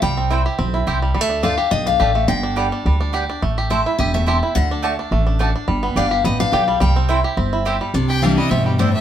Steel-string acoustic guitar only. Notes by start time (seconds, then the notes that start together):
0.02 G5
1.43 F5
1.71 D#5
1.87 F5
2.28 G5
3.70 E5
3.98 D#5
4.14 E5
4.55 F#5
5.97 F5
6.25 D#5
6.40 F5
6.81 G5
7.94 C3
8.22 E3 G3 D4 E4
8.37 D4 E4
8.51 B2
8.79 A2